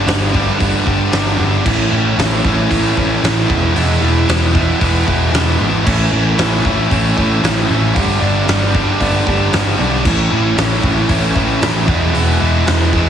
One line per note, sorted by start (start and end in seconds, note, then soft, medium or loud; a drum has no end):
0.06 0.47 G1 loud
0.06 0.32 G2 medium
0.06 0.33 D3 loud
0.06 0.33 G3 loud
0.06 0.34 B3 medium
0.06 0.34 D4 loud
0.06 snare loud
0.06 open hi-hat medium
0.34 0.58 G2 loud
0.34 0.59 D3 medium
0.34 0.58 G3 loud
0.34 0.59 B3 medium
0.34 0.60 D4 medium
0.34 kick medium
0.59 0.80 G1 medium
0.59 0.85 G2 medium
0.59 0.85 D3 medium
0.59 0.86 G3 loud
0.59 0.86 B3 loud
0.59 0.87 D4 loud
0.59 kick medium
0.59 open hi-hat medium
0.86 1.06 G1 medium
0.86 1.11 G2 medium
0.86 1.12 D3 medium
0.86 1.12 G3 medium
0.86 1.13 B3 loud
0.86 1.13 D4 loud
0.86 kick medium
1.12 1.33 G1 loud
1.12 1.36 G2 medium
1.12 1.37 D3 loud
1.12 1.37 G3 loud
1.12 1.38 B3 loud
1.12 1.38 D4 loud
1.12 snare loud
1.12 open hi-hat medium
1.37 1.60 G1 medium
1.37 1.63 G2 medium
1.37 1.64 D3 medium
1.37 1.64 G3 medium
1.37 1.64 B3 medium
1.37 1.64 D4 medium
1.65 1.86 A1 medium
1.65 1.89 A2 loud
1.65 1.91 E3 loud
1.65 1.90 A3 loud
1.65 1.90 C#4 loud
1.65 1.91 E4 loud
1.65 kick loud
1.65 crash loud
1.90 2.12 A1 medium
1.90 2.16 A2 medium
1.90 2.17 E3 medium
1.90 2.16 A3 medium
1.90 2.17 C#4 medium
1.90 2.18 E4 medium
2.17 2.38 A1 loud
2.17 2.43 A2 medium
2.17 2.44 E3 loud
2.17 2.44 A3 loud
2.17 2.44 C#4 loud
2.17 2.45 E4 loud
2.17 snare loud
2.17 open hi-hat medium
2.44 2.65 A1 medium
2.44 2.70 A2 medium
2.44 2.71 E3 medium
2.44 2.71 A3 loud
2.44 2.71 C#4 medium
2.44 2.72 E4 loud
2.44 kick medium
2.70 2.91 A1 loud
2.70 2.95 A2 loud
2.70 2.97 E3 medium
2.70 2.96 A3 medium
2.70 2.96 C#4 medium
2.70 2.98 E4 loud
2.70 kick medium
2.70 open hi-hat medium
2.96 3.17 A1 medium
2.96 3.22 A2 medium
2.96 3.23 E3 medium
2.96 3.23 A3 medium
2.96 3.23 C#4 loud
2.96 3.24 E4 medium
2.96 kick medium
3.23 3.43 A1 medium
3.23 3.48 A2 medium
3.23 3.48 E3 loud
3.23 3.48 A3 loud
3.23 3.48 C#4 loud
3.23 3.49 E4 loud
3.23 snare loud
3.23 open hi-hat medium
3.48 3.70 E1 medium
3.48 3.75 E3 loud
3.48 3.75 G#3 loud
3.48 3.75 B3 loud
3.48 3.76 E4 loud
3.48 kick loud
3.75 3.96 E1 loud
3.75 4.01 E3 loud
3.75 4.01 G#3 loud
3.75 4.01 B3 loud
3.75 4.03 E4 loud
3.75 open hi-hat medium
4.02 4.22 E1 medium
4.02 4.28 E3 medium
4.02 4.27 G#3 medium
4.02 4.27 B3 medium
4.02 4.29 E4 medium
4.28 4.69 E1 medium
4.28 4.54 E3 loud
4.28 4.54 G#3 loud
4.28 4.55 B3 loud
4.28 4.56 E4 loud
4.28 snare loud
4.28 open hi-hat medium
4.55 4.79 E3 medium
4.55 4.79 G#3 medium
4.55 4.80 B3 medium
4.55 4.80 E4 medium
4.55 kick medium
4.80 5.01 E1 loud
4.80 5.05 E3 medium
4.80 5.05 G#3 loud
4.80 5.06 B3 loud
4.80 5.06 E4 loud
4.80 kick medium
4.80 open hi-hat medium
5.06 5.28 E1 medium
5.06 5.31 E3 medium
5.06 5.32 G#3 medium
5.06 5.32 B3 medium
5.06 5.32 E4 medium
5.06 kick medium
5.32 5.53 E1 loud
5.32 5.58 E3 medium
5.32 5.58 G#3 medium
5.32 5.59 B3 loud
5.32 5.59 E4 loud
5.32 snare loud
5.32 open hi-hat medium
5.48 snare soft
5.59 5.86 G#1 medium
5.59 5.84 E3 medium
5.59 5.84 G#3 medium
5.59 5.85 B3 medium
5.59 5.85 E4 medium
5.85 6.06 A1 medium
5.85 6.10 A2 loud
5.85 6.11 E3 loud
5.85 6.11 A3 loud
5.85 6.11 C#4 loud
5.85 6.12 E4 loud
5.85 kick loud
5.85 crash loud
6.11 6.32 A1 medium
6.11 6.37 A2 medium
6.11 6.38 E3 medium
6.11 6.38 A3 medium
6.11 6.38 C#4 medium
6.11 6.39 E4 medium
6.38 6.59 A1 medium
6.38 6.64 A2 loud
6.38 6.64 E3 loud
6.38 6.65 A3 loud
6.38 6.65 C#4 loud
6.38 6.65 E4 loud
6.38 snare loud
6.38 open hi-hat medium
6.65 6.85 A1 medium
6.65 6.90 A2 medium
6.65 6.90 E3 medium
6.65 6.91 A3 medium
6.65 6.91 C#4 loud
6.65 6.91 E4 medium
6.65 kick medium
6.91 7.11 A1 medium
6.91 7.15 A2 medium
6.91 7.16 E3 loud
6.91 7.16 A3 loud
6.91 7.17 C#4 medium
6.91 7.17 E4 loud
6.91 kick medium
6.91 open hi-hat medium
7.17 7.37 A1 medium
7.17 7.41 A2 medium
7.17 7.42 E3 medium
7.17 7.42 A3 medium
7.17 7.43 C#4 medium
7.17 7.43 E4 medium
7.17 kick medium
7.43 7.63 A1 medium
7.43 7.68 A2 loud
7.43 7.69 E3 loud
7.43 7.69 A3 loud
7.43 7.69 C#4 loud
7.43 7.70 E4 loud
7.43 snare loud
7.43 open hi-hat medium
7.69 7.90 A1 medium
7.69 7.94 A2 medium
7.69 7.94 E3 medium
7.69 7.95 A3 medium
7.69 7.95 C#4 medium
7.69 7.95 E4 medium
7.95 8.16 G1 medium
7.95 8.20 G2 loud
7.95 8.20 D3 loud
7.95 8.21 G3 loud
7.95 8.21 B3 loud
7.95 8.21 D4 loud
7.95 kick loud
7.95 open hi-hat medium
8.21 8.42 G1 loud
8.21 8.46 G2 medium
8.21 8.47 D3 medium
8.21 8.48 G3 medium
8.21 8.48 B3 medium
8.21 8.48 D4 medium
8.47 8.88 G1 loud
8.47 8.73 G2 loud
8.47 8.73 D3 loud
8.47 8.74 G3 loud
8.47 8.74 B3 loud
8.47 8.74 D4 loud
8.47 snare loud
8.47 open hi-hat medium
8.74 8.98 G2 medium
8.74 8.99 D3 medium
8.74 8.99 G3 medium
8.74 9.00 B3 loud
8.74 9.00 D4 loud
8.74 kick medium
8.99 9.20 G1 medium
8.99 9.25 G2 medium
8.99 9.25 D3 medium
8.99 9.26 G3 loud
8.99 9.27 B3 loud
8.99 9.27 D4 loud
8.99 kick medium
8.99 open hi-hat medium
9.26 9.47 G1 medium
9.26 9.51 G2 medium
9.26 9.52 D3 medium
9.26 9.52 G3 medium
9.26 9.53 B3 medium
9.26 9.53 D4 loud
9.26 kick medium
9.53 9.73 G1 medium
9.53 9.77 G2 medium
9.53 9.77 D3 loud
9.53 9.78 G3 loud
9.53 9.79 B3 loud
9.53 9.79 D4 loud
9.53 snare loud
9.53 open hi-hat medium
9.78 10.05 B1 loud
9.78 10.03 G2 medium
9.78 10.03 D3 medium
9.78 10.04 G3 medium
9.78 10.04 B3 loud
9.78 10.04 D4 loud
10.04 10.25 A1 loud
10.04 10.29 A2 loud
10.04 10.31 E3 loud
10.04 10.30 A3 loud
10.04 10.30 C#4 loud
10.04 10.32 E4 loud
10.04 kick loud
10.04 crash medium
10.31 10.52 A1 loud
10.31 10.56 A2 medium
10.31 10.57 E3 medium
10.31 10.57 A3 loud
10.31 10.57 C#4 loud
10.31 10.58 E4 loud
10.57 10.77 A1 medium
10.57 10.82 A2 loud
10.57 10.82 E3 loud
10.57 10.82 A3 loud
10.57 10.83 C#4 loud
10.57 10.84 E4 loud
10.57 snare loud
10.57 open hi-hat medium
10.83 11.04 A1 medium
10.83 11.08 A2 medium
10.83 11.09 E3 medium
10.83 11.08 A3 loud
10.83 11.09 C#4 medium
10.83 11.10 E4 medium
10.83 kick medium
11.09 11.29 A1 loud
11.09 11.33 A2 loud
11.09 11.35 E3 medium
11.09 11.35 A3 medium
11.09 11.35 C#4 loud
11.09 11.36 E4 medium
11.09 kick medium
11.09 open hi-hat medium
11.35 11.56 A1 medium
11.35 11.60 A2 medium
11.35 11.61 E3 medium
11.35 11.61 A3 medium
11.35 11.61 C#4 medium
11.35 11.62 E4 medium
11.35 kick medium
11.61 11.89 A1 medium
11.61 11.86 A2 loud
11.61 11.87 E3 loud
11.61 11.87 A3 loud
11.61 11.87 C#4 loud
11.61 11.88 E4 loud
11.61 snare loud
11.61 open hi-hat medium
11.87 12.08 E1 medium
11.87 12.12 E3 loud
11.87 12.13 G#3 loud
11.87 12.13 B3 loud
11.87 12.13 E4 loud
11.87 kick loud
12.13 12.35 E1 loud
12.13 12.38 E3 medium
12.13 12.39 G#3 loud
12.13 12.39 B3 loud
12.13 12.39 E4 loud
12.13 open hi-hat medium
12.40 12.61 E1 medium
12.40 12.65 E3 medium
12.40 12.66 G#3 medium
12.40 12.66 B3 medium
12.40 12.67 E4 medium
12.66 13.07 E1 medium
12.66 12.92 E3 medium
12.66 12.92 G#3 loud
12.66 12.93 B3 loud
12.66 12.93 E4 loud
12.66 snare loud
12.66 open hi-hat medium
12.93 13.09 E3 medium
12.93 13.09 G#3 medium
12.93 13.09 B3 medium
12.93 13.09 E4 loud
12.93 kick medium